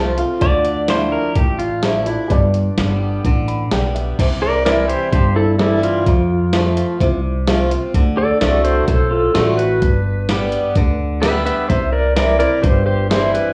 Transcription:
Already playing: upright bass C2, steel-string acoustic guitar C3 F3 A3 C4 F4, upright piano A4 C5 F5 A5
0.18 steel-string acoustic guitar C4 F4, upright piano F5, closed hi-hat
0.40 upright bass D2, steel-string acoustic guitar D3, upright piano F4 D5 E5, pedal steel guitar D5, kick, closed hi-hat
0.65 closed hi-hat
0.88 steel-string acoustic guitar F3 A3 D4 E4, pedal steel guitar C5, snare, closed hi-hat
1.12 pedal steel guitar A#4
1.36 upright bass A1, steel-string acoustic guitar A2, pedal steel guitar G4, kick, closed hi-hat
1.59 pedal steel guitar F4, closed hi-hat
1.83 steel-string acoustic guitar F3 A3 D4 E4, snare, closed hi-hat
2.06 steel-string acoustic guitar D4 E4, upright piano F4 D5 E5, closed hi-hat
2.28 upright bass G1, steel-string acoustic guitar G2, upright piano G4 B4 D5, kick, closed hi-hat
2.54 closed hi-hat
2.77 upright bass G1, steel-string acoustic guitar D3 G3 B3 G4, snare, closed hi-hat
3.24 upright bass A1, steel-string acoustic guitar D3, kick, closed hi-hat
3.48 upright piano B5, closed hi-hat
3.71 upright bass B1, steel-string acoustic guitar D3 G3 B3 G4, upright piano G5, snare, closed hi-hat
3.95 upright piano E5, closed hi-hat
4.19 upright bass C2, steel-string acoustic guitar C3, kick, closed hi-hat, crash
4.42 pedal steel guitar A#4 D5
4.65 steel-string acoustic guitar E3 G3 C4 E4, pedal steel guitar A#4 D5, snare, closed hi-hat
4.88 pedal steel guitar G4 C5, closed hi-hat
5.12 upright bass G1, steel-string acoustic guitar G2, pedal steel guitar G4 C5, kick, closed hi-hat
5.36 pedal steel guitar E4 A4
5.58 steel-string acoustic guitar E3 G3 C4 E4, pedal steel guitar E4 A4, snare, closed hi-hat
5.83 pedal steel guitar F4, closed hi-hat
6.06 upright bass F2, steel-string acoustic guitar F2, kick, closed hi-hat
6.53 steel-string acoustic guitar F3 A3 C4 F4, snare, closed hi-hat
6.77 closed hi-hat
7.01 upright bass C2, steel-string acoustic guitar C3, kick, closed hi-hat
7.47 steel-string acoustic guitar F3 A3 C4 F4, snare, closed hi-hat
7.71 steel-string acoustic guitar C4 F4, closed hi-hat
7.94 upright bass D2, steel-string acoustic guitar D3, kick, closed hi-hat
8.17 pedal steel guitar A4 D5
8.41 upright bass C2, steel-string acoustic guitar D3 A3 C4 F#4, pedal steel guitar A4 D5, snare, closed hi-hat
8.64 pedal steel guitar A4 C5, closed hi-hat
8.88 upright bass B1, steel-string acoustic guitar A2, pedal steel guitar A4 C5, kick, closed hi-hat
9.11 pedal steel guitar F4 A4
9.34 upright bass A1, steel-string acoustic guitar D3 A3 C4 F#4, pedal steel guitar F4 A4, snare, closed hi-hat
9.57 steel-string acoustic guitar C4 F#4, pedal steel guitar B4, closed hi-hat
9.82 upright bass G1, steel-string acoustic guitar G2, kick, closed hi-hat
10.29 steel-string acoustic guitar D3 G3 B3 G4, snare, closed hi-hat
10.52 closed hi-hat
10.76 upright bass D2, steel-string acoustic guitar D3, kick, closed hi-hat
11.22 steel-string acoustic guitar D3 G3 B3 G4, pedal steel guitar B4 E5, snare, closed hi-hat
11.46 pedal steel guitar B4 E5, closed hi-hat
11.69 upright bass C2, steel-string acoustic guitar C3, pedal steel guitar C5 E5, kick, closed hi-hat
11.92 pedal steel guitar A#4 D5
12.16 steel-string acoustic guitar E3 G3 C4 E4, pedal steel guitar A#4 D5, snare, closed hi-hat
12.39 steel-string acoustic guitar C4 E4, pedal steel guitar A#4 D5, closed hi-hat
12.62 upright bass G1, steel-string acoustic guitar G2, pedal steel guitar G4 C5, kick, closed hi-hat
12.86 pedal steel guitar G4 C5
13.10 steel-string acoustic guitar E3 G3 C4 E4, pedal steel guitar G4 C5, snare, closed hi-hat
13.34 pedal steel guitar B4, closed hi-hat

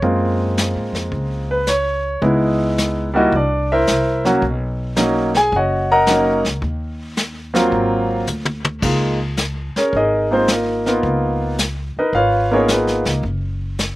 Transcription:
0.02 upright bass F#2, grand piano G#3 A#3 C4 F4, brush sweep, kick
0.58 snare, hi-hat pedal
0.76 upright bass G#2
0.93 upright bass F2, snare
1.12 upright bass C#2, brush sweep, kick
1.51 grand piano B4
1.67 grand piano C#5, snare, hi-hat pedal
2.22 upright bass C#2, grand piano G#3 B3 D#4 E4, brush sweep, kick
2.78 snare, hi-hat pedal
3.14 grand piano G3 A#3 D#4 E4 F#4 D#5
3.32 upright bass C2, grand piano D5, brush sweep, kick
3.37 grand piano D4
3.72 grand piano E4 A#4 C5 E5
3.87 upright bass C2, snare, hi-hat pedal
4.25 grand piano F#3 A#3 C#4 F#4, snare
4.42 upright bass B1, brush sweep, kick
4.96 grand piano F#3 A#3 C#4 D#4, snare, hi-hat pedal
5.34 grand piano G#4 G#5, snare
5.52 upright bass F#1, brush sweep, kick
5.56 grand piano F#4 C#5 D#5 F#5
5.92 grand piano A#4 D#5 F#5 A#5
6.07 grand piano F#3 A#3 C#4 D#4, snare, hi-hat pedal
6.45 upright bass C#2, snare
6.62 upright bass D#2, brush sweep, kick
7.17 snare, hi-hat pedal
7.54 grand piano F#3 A#3 C4 F4, snare
7.72 upright bass G#1, brush sweep, kick
8.27 upright bass D2, hi-hat pedal, high tom
8.45 high tom
8.65 high tom
8.82 upright bass C#2, grand piano G#3 A#3 D#4 F4, brush sweep, kick, crash
9.37 snare, hi-hat pedal
9.76 grand piano C#4 G#4 A#4 C#5, muted upright bass stroke, snare
9.93 upright bass G#1, grand piano D#4 G#4 A#4 D#5, brush sweep, kick
10.31 grand piano G#3 A#3 C4 D#4 F4 C5
10.48 grand piano A#3 D#4 A#4, snare, hi-hat pedal
10.52 grand piano F4
10.86 grand piano A#3 B3 D#4 F4, snare
11.03 upright bass C#2, brush sweep, kick
11.59 snare, hi-hat pedal
11.97 grand piano D#4 A#4 B4 D#5, muted upright bass stroke
12.13 upright bass G#1, grand piano F4 B4 C#5 F5, brush sweep, kick
12.51 grand piano A#3 B3 C#4 D#4 F4 G#4 A#4 C#5
12.68 grand piano B3 F4 G#4 B4, snare, hi-hat pedal
12.87 snare
13.05 upright bass C#2, snare
13.23 upright bass F#1, brush sweep, kick
13.79 snare, hi-hat pedal

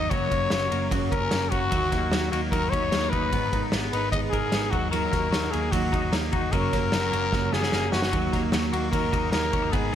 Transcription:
Already playing: clean electric guitar A#3, steel-string acoustic guitar D#4 F#4, trumpet D#5
0.10 picked electric bass F#1, steel-string acoustic guitar F#2 C#3 F#3 A#3 C#4 F#4, trumpet C#5, kick, ride
0.30 picked electric bass F#1, steel-string acoustic guitar F#3 A#3 C#4 F#4, kick, ride
0.49 picked electric bass F#1, steel-string acoustic guitar F#3 A#3 C#4 F#4, snare, ride
0.70 picked electric bass F#1, steel-string acoustic guitar F#3 A#3 C#4 F#4, ride
0.90 picked electric bass F#1, steel-string acoustic guitar F#2 C#3 F#3 A#3 C#4 F#4, kick, ride
1.11 picked electric bass F#1, steel-string acoustic guitar F#3 A#3 C#4 F#4, trumpet A#4, kick, ride
1.31 picked electric bass F#1, steel-string acoustic guitar F#3 A#3 C#4 F#4, snare, ride
1.51 picked electric bass F#1, steel-string acoustic guitar F#3 A#3 C#4 F#4, trumpet F#4, kick, ride
1.72 picked electric bass D#2, steel-string acoustic guitar D#3 F#3 A#3 D#4 F#4, kick, ride
1.91 picked electric bass D#2, steel-string acoustic guitar A#3 D#4 F#4, kick, snare, ride
2.12 picked electric bass D#2, steel-string acoustic guitar F#3 A#3 D#4 F#4, snare, ride
2.31 picked electric bass D#2, steel-string acoustic guitar A#3 D#4 F#4, trumpet F#4, ride
2.51 picked electric bass D#2, steel-string acoustic guitar D#3 F#3 A#3 D#4 F#4, trumpet A#4, kick, ride
2.70 picked electric bass D#2, clean electric guitar C#4, steel-string acoustic guitar D#4 F#4, trumpet C#5, kick, ride
2.75 steel-string acoustic guitar A#3
2.83 clean electric guitar D#4
2.92 picked electric bass D#2, steel-string acoustic guitar F#3 A#3 D#4 F#4, clean electric guitar G#3, snare, ride
3.03 clean electric guitar A#3
3.10 picked electric bass D#2, steel-string acoustic guitar F#4, trumpet B4, kick, ride
3.14 steel-string acoustic guitar A#3 D#4
3.31 picked electric bass G#1, steel-string acoustic guitar G#2 D#3 G#3 B3 D#4 A#4, kick, ride
3.52 picked electric bass G#1, steel-string acoustic guitar G#3 B3 D#4 A#4, kick, ride
3.72 picked electric bass G#1, steel-string acoustic guitar G#3 B3 D#4 A#4, snare, ride
3.92 picked electric bass G#1, steel-string acoustic guitar G#3 B3 D#4 A#4, trumpet B4, ride
4.12 picked electric bass G#1, steel-string acoustic guitar G#2 D#3 G#3 B3 D#4 A#4, trumpet D#5, kick, ride
4.30 picked electric bass G#1, steel-string acoustic guitar B3 D#4 A#4, trumpet G#4, kick, ride
4.35 steel-string acoustic guitar G#3
4.51 picked electric bass G#1, steel-string acoustic guitar G#3 B3 D#4 A#4, snare, ride
4.71 picked electric bass D#2, clean electric guitar F#3, steel-string acoustic guitar D#4 F#4, trumpet F#4, kick, ride
4.75 steel-string acoustic guitar A#3
4.91 steel-string acoustic guitar D#3 F#3 A#3 D#4 F#4, trumpet A#4, ride
5.11 picked electric bass D#2, steel-string acoustic guitar A#3 D#4 F#4, kick, snare, ride
5.30 picked electric bass D#2, steel-string acoustic guitar F#3 A#3 D#4 F#4, snare, ride
5.50 picked electric bass D#2, steel-string acoustic guitar A#3 D#4 F#4, trumpet G#4, ride
5.72 picked electric bass D#2, steel-string acoustic guitar D#3 F#3 A#3 D#4 F#4, trumpet F#4, kick, ride
5.90 picked electric bass D#2, steel-string acoustic guitar A#3 D#4 F#4, kick, ride
6.10 picked electric bass D#2, steel-string acoustic guitar F#3 A#3 D#4 F#4, snare, ride
6.32 picked electric bass D#2, steel-string acoustic guitar A#3 D#4 F#4, trumpet F#4, kick, ride
6.52 picked electric bass F#1, steel-string acoustic guitar F#2 C#3 F#3 A#3 C#4 F#4, trumpet A#4, kick, ride
6.72 picked electric bass F#1, steel-string acoustic guitar F#3 A#3 C#4 F#4, kick, snare, ride
6.91 picked electric bass F#1, steel-string acoustic guitar F#3 A#3 C#4 F#4, snare, ride
7.12 picked electric bass F#1, steel-string acoustic guitar F#3 A#3 C#4 F#4, ride
7.32 picked electric bass F#1, steel-string acoustic guitar F#2 C#3 F#3 A#3 C#4 F#4, kick, snare
7.52 picked electric bass F#1, steel-string acoustic guitar F#3 A#3 C#4 F#4, clean electric guitar B3, trumpet G#4, snare
7.63 clean electric guitar C#4, snare
7.72 picked electric bass F#1, steel-string acoustic guitar F#3 A#3 C#4 F#4, snare
7.91 picked electric bass F#1, steel-string acoustic guitar F#3 A#3 C#4 F#4, trumpet F#4, snare
8.02 snare
8.11 picked electric bass D#2, steel-string acoustic guitar D#3 F#3 A#3 D#4 F#4, vibraphone A#3, kick, ride
8.32 picked electric bass D#2, steel-string acoustic guitar A#3 D#4 F#4, kick, snare, ride
8.52 picked electric bass D#2, steel-string acoustic guitar F#3 A#3 D#4 F#4, snare, ride
8.72 picked electric bass D#2, steel-string acoustic guitar A#3 D#4 F#4, trumpet F#4, ride
8.91 picked electric bass D#2, steel-string acoustic guitar D#3 F#3 A#3 D#4 F#4, trumpet A#4, kick, ride
9.11 picked electric bass D#2, steel-string acoustic guitar A#3 D#4 F#4, kick, ride
9.31 picked electric bass D#2, steel-string acoustic guitar F#3 A#3 D#4 F#4, clean electric guitar G#3, trumpet A#4, snare, ride
9.42 clean electric guitar A#3
9.52 picked electric bass D#2, steel-string acoustic guitar A#3 D#4 F#4, clean electric guitar C#4, kick, ride
9.62 clean electric guitar D#4
9.72 picked electric bass G#1, steel-string acoustic guitar G#2 D#3 G#3 B3 D#4 A#4, vibraphone B3, trumpet G#4, kick, ride

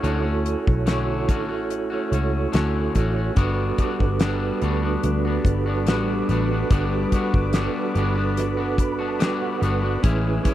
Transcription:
Already playing: tonewheel organ E4 F#4 A4 C#5
0.02 picked electric bass D2, clean electric guitar D3 A3 C#4 F#4, closed hi-hat
0.22 clean electric guitar A3 C#4 F#4
0.46 closed hi-hat
0.67 picked electric bass B1, kick
0.86 clean electric guitar D3 A3 C#4 F#4, snare, closed hi-hat
1.27 picked electric bass A1, clean electric guitar D3 A3 C#4 F#4, kick, closed hi-hat
1.49 clean electric guitar A3 C#4 F#4
1.70 closed hi-hat
1.90 clean electric guitar A3 C#4 F#4
2.12 picked electric bass C#2, clean electric guitar A3 C#4 F#4, closed hi-hat
2.52 picked electric bass D2, clean electric guitar D3 A3 C#4 F#4, snare, closed hi-hat
2.95 picked electric bass A1, clean electric guitar D3 A3 C#4 F#4, kick, closed hi-hat
3.16 clean electric guitar A3 C#4 F#4
3.35 picked electric bass G1, clean electric guitar G3 B3 D4 F#4, analog synth pad G3 F#5 B5 D6, tonewheel organ D4 F#4 A4, kick, closed hi-hat
3.40 tonewheel organ B4
3.78 clean electric guitar G3 B3 D4 F#4, kick, closed hi-hat
4.00 picked electric bass G1, kick
4.20 clean electric guitar G3 B3 D4 F#4, snare, closed hi-hat
4.62 picked electric bass D2, clean electric guitar G3 B3 D4 F#4, closed hi-hat
4.82 clean electric guitar B3 D4 F#4
5.03 picked electric bass D2, closed hi-hat
5.25 clean electric guitar B3 D4 F#4
5.45 picked electric bass G1, kick, closed hi-hat
5.66 clean electric guitar B3 D4 F#4
5.87 picked electric bass A1, clean electric guitar G3 B3 D4 F#4, snare, closed hi-hat
6.29 picked electric bass A1, clean electric guitar G3 B3 D4 F#4, closed hi-hat
6.50 clean electric guitar B3 D4 F#4
6.70 picked electric bass G1, clean electric guitar G3 B3 D4 F#4, kick, closed hi-hat
7.12 clean electric guitar G3 B3 D4 F#4, kick, closed hi-hat
7.34 picked electric bass G1, kick
7.53 clean electric guitar G3 B3 D4 F#4, snare, closed hi-hat
7.94 picked electric bass G1, clean electric guitar G3 B3 D4 F#4, closed hi-hat
8.15 clean electric guitar B3 D4 F#4
8.37 snare, closed hi-hat
8.57 clean electric guitar B3 D4 F#4
8.78 tonewheel organ B5, kick, closed hi-hat
8.99 clean electric guitar B3 D4 F#4, tonewheel organ A5
9.19 clean electric guitar G3 B3 D4 F#4, tonewheel organ G5, snare, closed hi-hat
9.42 tonewheel organ F#5
9.61 picked electric bass G1, clean electric guitar G3 B3 D4 F#4, closed hi-hat
9.82 clean electric guitar B3 D4 F#4
10.02 picked electric bass A1, clean electric guitar A2 E3 G#3 C#4 E4, tonewheel organ C#4 E4 G#4, analog synth pad C#5 E5 G#5 E6, kick, closed hi-hat
10.06 tonewheel organ B4
10.44 clean electric guitar E3 G#3 C#4 E4, kick, closed hi-hat

